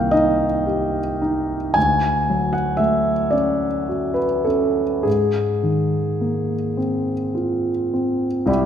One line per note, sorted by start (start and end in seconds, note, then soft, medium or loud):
0.00 1.72 C2 soft
0.00 1.79 D#3 soft
0.00 0.45 A#3 soft
0.00 0.13 F5 medium
0.00 1.79 G5 medium
0.11 0.99 D#4 soft
0.11 1.75 D#5 medium
0.67 1.55 G4 soft
1.22 1.76 D#4 soft
1.74 5.02 D2 soft
1.74 2.53 G#5 medium
2.30 3.12 F#3 soft
2.53 2.79 F#5 soft
2.77 3.66 A3 soft
2.77 3.32 E5 medium
3.31 4.24 C#4 soft
3.31 4.17 D5 medium
3.89 4.82 F#4 soft
4.14 4.45 B4 soft
4.45 5.05 C#4 soft
4.45 5.04 A4 soft
5.03 8.43 G#2 soft
5.03 6.77 G#4 soft
5.63 6.55 D#3 soft
6.21 7.12 A#3 soft
6.77 7.68 C4 soft
7.35 8.26 F4 soft
7.94 8.49 C4 soft
8.46 8.66 C2 soft
8.46 8.66 E4 soft
8.46 8.66 G4 soft
8.46 8.66 D5 soft
8.46 8.66 B5 soft